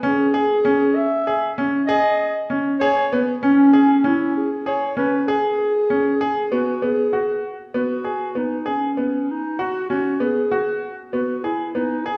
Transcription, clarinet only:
0.05 G#4
0.96 E5
1.87 D#5
2.80 C#5
3.43 C#4
4.06 E4
4.37 G#4
4.67 C#5
4.98 B4
5.27 G#4
6.52 F#4
6.83 G#4
7.76 F#4
8.38 D#4
8.68 C#4
9.31 D#4
9.60 F#4
9.90 F#4
10.21 G#4
11.12 F#4
11.44 E4
11.75 D#4
12.05 G#4

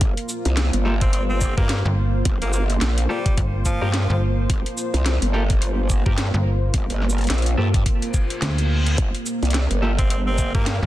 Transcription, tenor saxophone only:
1.01 C4
1.13 C4
1.29 C4
1.57 A#3
2.42 A#3
2.54 A#3
3.09 G3
3.65 F3
9.98 C4
10.10 C4
10.27 C4
10.54 A#3

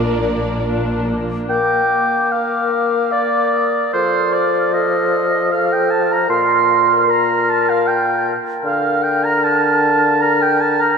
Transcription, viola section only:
Already playing: D4 F4
0.19 A#3 D4
0.63 D4 F4
1.06 A#3 D4

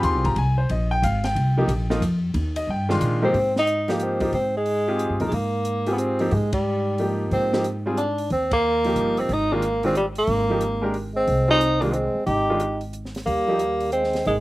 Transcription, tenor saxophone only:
3.24 C4
3.59 D#4
3.91 A#3
4.03 C4
4.34 C4
4.57 G#3
5.27 G#3
5.33 A#3
5.92 B3
5.99 C4
6.33 G#3
6.53 G3
7.32 C4
7.97 D4
8.32 C4
8.53 A#3
9.19 C4
9.33 D#4
9.52 A#3
9.85 C4
9.97 G3
10.18 A#3
11.16 C4
11.50 D#4
11.82 A#3
11.93 C4
12.26 G4
13.26 A#3
13.92 C4
14.27 G#3

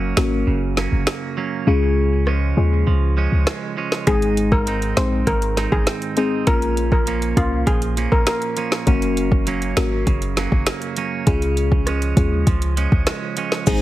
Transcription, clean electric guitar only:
Already playing: F#2 F#3 A#3 C#4
0.47 C#3
0.77 F#3 A#3 C#4
1.07 A#3
1.37 F#3 A#3 C#4
1.67 C#3 C#4
2.27 F3 G#3 C#4
2.87 F3
3.17 F3 G#3 C#4
3.47 G#3
3.77 F3 G#3 C#4
4.07 G#2 D#4
4.67 G#3 C4 D#4
5.27 D#3
5.57 G#3 C4 D#4
5.87 C4
6.17 G#3 C4 D#4
6.47 A#2 C#4
7.07 F3 A#3 C#4
7.67 F3
7.97 F3 A#3 C#4
8.27 A#3
8.57 F3 A#3 C#4
8.87 F#2 C#4
9.47 F#3 A#3 C#4
10.07 C#3
10.37 F#3 A#3 C#4
10.67 A#3
10.97 F#3 A#3 C#4
11.27 C#3 C#4
11.87 F3 G#3 C#4
12.47 F3
12.77 F3 G#3 C#4
13.07 G#3
13.37 F3 G#3 C#4
13.67 G#2 D#4

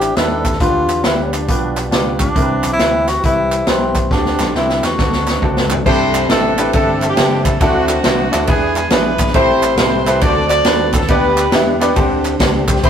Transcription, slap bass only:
Already playing: A1
0.17 D#2
0.60 D2
0.88 E2
1.04 D2
1.49 B1
1.92 C#2
2.36 C2
2.64 B1
2.79 D2
3.24 C2
3.68 B1
4.11 D2
4.40 B1
4.55 C2
4.84 E2
4.99 D2
5.42 C#2
5.86 C2
6.30 A1
6.74 G1
7.18 F#1
7.61 D2
8.05 C2
8.33 D2
8.48 E2
8.91 A#1
9.35 A1
9.78 C2
10.22 D2
10.66 D#2
11.09 D2
11.53 E2
11.97 D2
12.40 C#2
12.84 C2

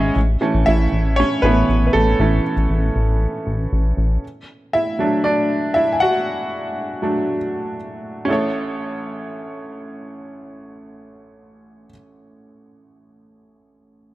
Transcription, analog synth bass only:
Already playing: G#1
0.16 A1
0.54 A1
0.67 A1
0.92 A1
1.43 A1
1.69 A1
1.94 A1
2.19 A1
2.57 A1
2.70 A1
2.96 A1
3.47 A1
3.73 A1
3.97 A1

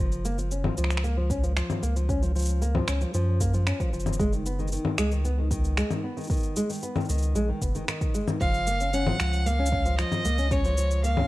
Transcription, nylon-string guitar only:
0.00 F3
0.25 A#3
0.38 F3
0.51 C#4
0.65 F3
0.78 F3
1.04 A#3
1.17 F3
1.30 C#4
1.43 F3
1.56 F3
1.83 A#3
1.96 F3
2.09 C#4
2.22 F3
2.35 F3
2.62 A#3
2.75 F3
2.88 C#4
3.01 F3
3.14 F3
3.41 A#3
3.54 F3
3.67 C#4
3.80 F3
3.93 F3
4.19 G#3
4.33 D#3
4.46 B3
4.59 D#3
4.72 D#3
4.98 G#3
5.12 D#3
5.25 B3
5.38 D#3
5.51 D#3
5.77 G#3
5.90 D#3
6.04 B3
6.17 D#3
6.30 D#3
6.56 G#3
6.70 D#3
6.83 B3
6.96 D#3
7.09 D#3
7.35 G#3
7.48 D#3
7.62 B3
7.75 D#3
7.88 D#3
8.14 G#3
8.28 D#3
8.41 F3
8.67 A#3
8.80 C#4
8.94 C#4
9.07 F3
9.20 F3
9.46 A#3
9.59 C#4
9.72 C#4
9.86 F3
9.99 F3
10.25 A#3
10.38 C#4
10.51 C#4
10.65 F3
10.78 F3
11.04 A#3
11.17 C#4

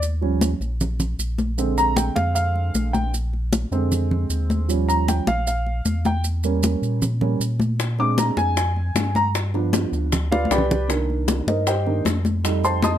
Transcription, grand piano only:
0.21 F3 G3 C#4
1.58 D3 G#3 C4
1.78 A#5
1.97 G5
2.16 F5
2.35 F5
2.93 G5
3.71 D3 G#3 C4
4.68 F3 G3 C#4
4.89 A#5
5.09 G5
5.28 F5
5.47 F5
6.06 G5
6.44 G3 A#3 C#4
7.21 G3 A#3 C#4
7.99 G#3 C4 D4 D6
8.19 A#5
8.38 G#5
8.58 G#5
9.16 A#5
9.54 F3 B3 D4
10.32 F4 B4 D5 F5
10.51 G4 B4 D5 G5
10.88 D#3 A#3 D4
11.48 D#4 A#4 C5 D#5
11.68 G4 C5 D#5 G5
11.86 D#3 A#3 D4
12.44 G3 A3 D#4
12.65 C5 G5 A5 C6
12.84 D#5 A5 C6 D#6

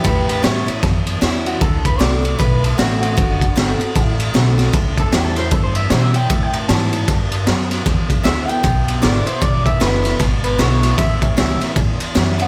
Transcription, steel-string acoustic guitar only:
0.04 A2
0.43 E3 G3 C#4 E4
0.66 C#4 E4
0.83 E2
1.21 E3 G3 C#4 E4
1.61 D3
1.99 D3 A3 C4 F#4
2.23 C4 F#4
2.39 A2
2.78 D3 A3 C4 F#4
3.17 D3
3.56 D3 A3 C4 F#4
3.80 C4 F#4
3.95 A2
4.34 D3 A3 C4 F#4
4.58 C4 F#4
4.73 A2
5.12 E3 G3 C#4 E4
5.37 C#4 E4
5.52 E2
5.91 E3 G3 C#4 E4
6.14 C#4 E4
6.30 A2
6.69 E3 G3 C#4 E4
6.93 C#4 E4
7.08 G2
7.47 F#2
7.86 E2
8.23 D3 G#3 B3 E4
8.48 B3 E4
8.63 B2
9.02 D3 G#3 B3 E4
9.26 B3 E4
9.41 E2
9.80 D3 G#3 B3 E4
10.04 B3 E4
10.19 B2
10.58 D3 G#3 B3 E4
10.83 B3 E4
10.98 A2
11.37 E3 G3 C#4 E4
11.61 C#4 E4
11.76 E2
12.15 E3 G3 C#4 E4
12.39 C#4 E4

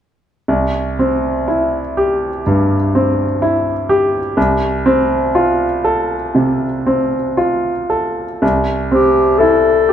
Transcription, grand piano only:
0.48 C2
0.99 C4
1.48 E4
1.97 G4
2.46 G2
2.95 C4
3.42 E4
3.89 G4
4.37 C2
4.86 C4
5.35 F4
5.84 A4
6.35 C3
6.87 C4
7.37 F4
7.90 A4
8.42 C2
8.92 C4
9.40 E4
9.89 G4

